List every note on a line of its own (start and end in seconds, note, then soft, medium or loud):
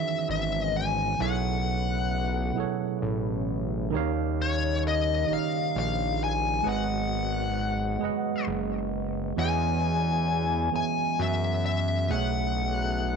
0.00 1.16 C#3 medium
0.00 0.66 D#3 medium
0.00 1.20 E3 loud
0.00 1.16 F#3 medium
0.00 3.87 B3 medium
0.00 1.16 C#4 medium
0.00 1.20 D#4 medium
0.00 1.20 F#4 medium
0.00 1.20 G#4 medium
0.00 0.68 B4 medium
0.00 1.20 C#5 loud
0.00 0.27 E5 medium
0.29 1.15 G#1 medium
0.29 0.65 E5 medium
0.65 0.76 D#5 medium
0.76 1.22 G#5 loud
1.18 2.52 B1 loud
1.18 2.02 B2 medium
1.18 6.61 C#3 medium
1.18 2.02 F#3 medium
1.18 3.89 A3 medium
1.18 3.89 E4 medium
1.18 2.03 E4 medium
1.18 2.03 G#4 medium
1.18 2.98 F#5 loud
1.23 2.04 A4 medium
1.23 2.04 C#5 loud
2.53 2.66 A1 soft
2.53 3.37 B2 medium
2.53 3.38 F#3 medium
2.53 3.39 E4 medium
2.53 3.39 G#4 medium
2.58 3.40 A4 medium
2.58 3.40 C#5 loud
3.02 3.95 A1 medium
3.90 5.25 D#2 loud
3.90 4.74 D#3 loud
3.90 6.62 G3 medium
3.90 6.62 A#3 medium
3.90 6.62 D#4 medium
3.90 4.75 D#4 loud
3.90 4.76 G4 loud
3.95 4.76 C#5 loud
3.95 4.77 F5 loud
4.42 4.82 C#5 medium
4.88 5.32 D#5 medium
5.27 5.38 A#1 soft
5.27 6.11 D#3 medium
5.27 6.11 D#4 medium
5.27 6.12 G4 medium
5.31 6.13 C#5 medium
5.31 6.13 D#5 medium
5.31 5.77 F5 loud
5.76 6.61 A#1 medium
5.76 6.23 F5 medium
6.24 6.68 G#5 loud
6.62 7.97 G#1 loud
6.62 12.06 F#3 medium
6.62 7.46 G#3 medium
6.62 12.06 G#3 medium
6.62 9.34 B3 medium
6.62 12.06 F#4 medium
6.62 7.47 G#4 medium
6.62 7.48 B4 medium
6.67 7.48 D#5 medium
6.67 7.49 F#5 medium
6.67 8.44 F#5 loud
7.99 8.11 F#1 soft
7.99 8.83 G#3 medium
7.99 8.84 G#4 medium
7.99 8.85 B4 medium
8.04 8.85 D#5 medium
8.04 8.86 F#5 loud
8.47 9.33 F#1 medium
9.36 10.70 E2 loud
9.36 10.20 E3 medium
9.36 10.20 B3 medium
9.36 12.07 C#4 medium
9.36 9.44 F#4 medium
9.36 10.21 C#5 medium
9.36 10.75 G#5 loud
9.41 10.22 D#5 medium
9.41 10.22 F#5 loud
9.45 10.24 G#4 medium
10.72 10.83 F#2 medium
10.72 11.56 E3 medium
10.72 11.56 B3 medium
10.72 11.57 G#4 medium
10.72 11.57 C#5 medium
10.76 11.58 E5 medium
10.76 11.21 G#5 loud
10.76 11.58 G#5 medium
11.19 12.12 F#2 medium
11.19 11.65 E5 medium
11.66 12.12 E5 medium
12.09 13.16 B1 loud
12.09 12.92 B2 medium
12.09 13.16 C#3 medium
12.09 13.16 A3 medium
12.09 12.93 A3 medium
12.09 13.16 E4 medium
12.09 13.16 G#4 medium
12.09 12.94 G#4 medium
12.09 13.16 F#5 medium
12.13 12.94 C#5 medium
12.13 12.95 E5 loud